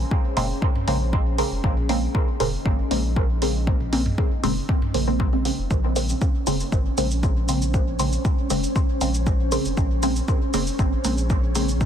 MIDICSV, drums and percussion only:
0, 0, Header, 1, 2, 480
1, 0, Start_track
1, 0, Key_signature, -5, "minor"
1, 0, Tempo, 508475
1, 1547, Time_signature, 4, 2, 24, 8
1, 11191, End_track
2, 0, Start_track
2, 0, Title_t, "Drums"
2, 107, Note_on_c, 9, 36, 117
2, 201, Note_off_c, 9, 36, 0
2, 347, Note_on_c, 9, 46, 82
2, 348, Note_on_c, 9, 48, 73
2, 441, Note_off_c, 9, 46, 0
2, 442, Note_off_c, 9, 48, 0
2, 587, Note_on_c, 9, 36, 109
2, 681, Note_off_c, 9, 36, 0
2, 712, Note_on_c, 9, 45, 76
2, 806, Note_off_c, 9, 45, 0
2, 827, Note_on_c, 9, 46, 77
2, 921, Note_off_c, 9, 46, 0
2, 1067, Note_on_c, 9, 36, 109
2, 1161, Note_off_c, 9, 36, 0
2, 1307, Note_on_c, 9, 46, 80
2, 1401, Note_off_c, 9, 46, 0
2, 1547, Note_on_c, 9, 36, 109
2, 1641, Note_off_c, 9, 36, 0
2, 1671, Note_on_c, 9, 48, 54
2, 1766, Note_off_c, 9, 48, 0
2, 1786, Note_on_c, 9, 46, 75
2, 1881, Note_off_c, 9, 46, 0
2, 2027, Note_on_c, 9, 36, 115
2, 2121, Note_off_c, 9, 36, 0
2, 2267, Note_on_c, 9, 46, 78
2, 2267, Note_on_c, 9, 48, 73
2, 2361, Note_off_c, 9, 46, 0
2, 2362, Note_off_c, 9, 48, 0
2, 2507, Note_on_c, 9, 36, 113
2, 2601, Note_off_c, 9, 36, 0
2, 2747, Note_on_c, 9, 46, 74
2, 2841, Note_off_c, 9, 46, 0
2, 2987, Note_on_c, 9, 36, 113
2, 3081, Note_off_c, 9, 36, 0
2, 3227, Note_on_c, 9, 46, 79
2, 3321, Note_off_c, 9, 46, 0
2, 3467, Note_on_c, 9, 36, 115
2, 3561, Note_off_c, 9, 36, 0
2, 3591, Note_on_c, 9, 48, 54
2, 3685, Note_off_c, 9, 48, 0
2, 3707, Note_on_c, 9, 46, 78
2, 3801, Note_off_c, 9, 46, 0
2, 3831, Note_on_c, 9, 45, 82
2, 3925, Note_off_c, 9, 45, 0
2, 3947, Note_on_c, 9, 36, 113
2, 4041, Note_off_c, 9, 36, 0
2, 4187, Note_on_c, 9, 46, 81
2, 4187, Note_on_c, 9, 48, 78
2, 4281, Note_off_c, 9, 48, 0
2, 4282, Note_off_c, 9, 46, 0
2, 4427, Note_on_c, 9, 36, 116
2, 4521, Note_off_c, 9, 36, 0
2, 4551, Note_on_c, 9, 45, 75
2, 4645, Note_off_c, 9, 45, 0
2, 4667, Note_on_c, 9, 46, 75
2, 4761, Note_off_c, 9, 46, 0
2, 4907, Note_on_c, 9, 36, 114
2, 5001, Note_off_c, 9, 36, 0
2, 5147, Note_on_c, 9, 46, 80
2, 5241, Note_off_c, 9, 46, 0
2, 5387, Note_on_c, 9, 36, 113
2, 5387, Note_on_c, 9, 82, 32
2, 5481, Note_off_c, 9, 36, 0
2, 5482, Note_off_c, 9, 82, 0
2, 5627, Note_on_c, 9, 46, 78
2, 5627, Note_on_c, 9, 82, 69
2, 5721, Note_off_c, 9, 46, 0
2, 5721, Note_off_c, 9, 82, 0
2, 5752, Note_on_c, 9, 82, 42
2, 5846, Note_off_c, 9, 82, 0
2, 5867, Note_on_c, 9, 36, 122
2, 5867, Note_on_c, 9, 82, 32
2, 5961, Note_off_c, 9, 36, 0
2, 5961, Note_off_c, 9, 82, 0
2, 6107, Note_on_c, 9, 46, 85
2, 6107, Note_on_c, 9, 82, 72
2, 6201, Note_off_c, 9, 46, 0
2, 6201, Note_off_c, 9, 82, 0
2, 6232, Note_on_c, 9, 82, 43
2, 6326, Note_off_c, 9, 82, 0
2, 6347, Note_on_c, 9, 36, 115
2, 6347, Note_on_c, 9, 82, 32
2, 6441, Note_off_c, 9, 36, 0
2, 6442, Note_off_c, 9, 82, 0
2, 6587, Note_on_c, 9, 46, 80
2, 6587, Note_on_c, 9, 82, 71
2, 6681, Note_off_c, 9, 46, 0
2, 6681, Note_off_c, 9, 82, 0
2, 6712, Note_on_c, 9, 82, 42
2, 6806, Note_off_c, 9, 82, 0
2, 6827, Note_on_c, 9, 36, 118
2, 6827, Note_on_c, 9, 82, 32
2, 6921, Note_off_c, 9, 36, 0
2, 6922, Note_off_c, 9, 82, 0
2, 7067, Note_on_c, 9, 46, 84
2, 7067, Note_on_c, 9, 82, 74
2, 7162, Note_off_c, 9, 46, 0
2, 7162, Note_off_c, 9, 82, 0
2, 7192, Note_on_c, 9, 82, 43
2, 7286, Note_off_c, 9, 82, 0
2, 7307, Note_on_c, 9, 36, 119
2, 7307, Note_on_c, 9, 82, 33
2, 7401, Note_off_c, 9, 36, 0
2, 7402, Note_off_c, 9, 82, 0
2, 7547, Note_on_c, 9, 46, 82
2, 7547, Note_on_c, 9, 82, 72
2, 7641, Note_off_c, 9, 46, 0
2, 7641, Note_off_c, 9, 82, 0
2, 7671, Note_on_c, 9, 82, 43
2, 7766, Note_off_c, 9, 82, 0
2, 7787, Note_on_c, 9, 36, 124
2, 7787, Note_on_c, 9, 82, 31
2, 7881, Note_off_c, 9, 36, 0
2, 7881, Note_off_c, 9, 82, 0
2, 8027, Note_on_c, 9, 46, 89
2, 8027, Note_on_c, 9, 82, 77
2, 8121, Note_off_c, 9, 46, 0
2, 8121, Note_off_c, 9, 82, 0
2, 8151, Note_on_c, 9, 82, 43
2, 8245, Note_off_c, 9, 82, 0
2, 8267, Note_on_c, 9, 36, 122
2, 8267, Note_on_c, 9, 82, 32
2, 8361, Note_off_c, 9, 36, 0
2, 8361, Note_off_c, 9, 82, 0
2, 8507, Note_on_c, 9, 46, 84
2, 8507, Note_on_c, 9, 82, 67
2, 8601, Note_off_c, 9, 46, 0
2, 8601, Note_off_c, 9, 82, 0
2, 8631, Note_on_c, 9, 82, 43
2, 8726, Note_off_c, 9, 82, 0
2, 8747, Note_on_c, 9, 36, 119
2, 8747, Note_on_c, 9, 82, 32
2, 8841, Note_off_c, 9, 36, 0
2, 8841, Note_off_c, 9, 82, 0
2, 8987, Note_on_c, 9, 46, 86
2, 8987, Note_on_c, 9, 82, 73
2, 9081, Note_off_c, 9, 46, 0
2, 9081, Note_off_c, 9, 82, 0
2, 9111, Note_on_c, 9, 82, 42
2, 9205, Note_off_c, 9, 82, 0
2, 9227, Note_on_c, 9, 36, 117
2, 9227, Note_on_c, 9, 82, 32
2, 9321, Note_off_c, 9, 36, 0
2, 9321, Note_off_c, 9, 82, 0
2, 9467, Note_on_c, 9, 46, 86
2, 9467, Note_on_c, 9, 82, 71
2, 9561, Note_off_c, 9, 46, 0
2, 9561, Note_off_c, 9, 82, 0
2, 9591, Note_on_c, 9, 82, 42
2, 9685, Note_off_c, 9, 82, 0
2, 9707, Note_on_c, 9, 36, 122
2, 9707, Note_on_c, 9, 82, 29
2, 9801, Note_off_c, 9, 36, 0
2, 9801, Note_off_c, 9, 82, 0
2, 9947, Note_on_c, 9, 46, 92
2, 9947, Note_on_c, 9, 82, 76
2, 10041, Note_off_c, 9, 46, 0
2, 10041, Note_off_c, 9, 82, 0
2, 10071, Note_on_c, 9, 82, 43
2, 10166, Note_off_c, 9, 82, 0
2, 10187, Note_on_c, 9, 36, 125
2, 10187, Note_on_c, 9, 82, 32
2, 10281, Note_off_c, 9, 36, 0
2, 10281, Note_off_c, 9, 82, 0
2, 10427, Note_on_c, 9, 46, 83
2, 10427, Note_on_c, 9, 82, 68
2, 10521, Note_off_c, 9, 46, 0
2, 10521, Note_off_c, 9, 82, 0
2, 10551, Note_on_c, 9, 82, 43
2, 10645, Note_off_c, 9, 82, 0
2, 10667, Note_on_c, 9, 36, 124
2, 10667, Note_on_c, 9, 82, 30
2, 10761, Note_off_c, 9, 36, 0
2, 10761, Note_off_c, 9, 82, 0
2, 10906, Note_on_c, 9, 46, 90
2, 10906, Note_on_c, 9, 82, 74
2, 11001, Note_off_c, 9, 46, 0
2, 11001, Note_off_c, 9, 82, 0
2, 11031, Note_on_c, 9, 82, 41
2, 11125, Note_off_c, 9, 82, 0
2, 11147, Note_on_c, 9, 36, 118
2, 11147, Note_on_c, 9, 82, 29
2, 11191, Note_off_c, 9, 36, 0
2, 11191, Note_off_c, 9, 82, 0
2, 11191, End_track
0, 0, End_of_file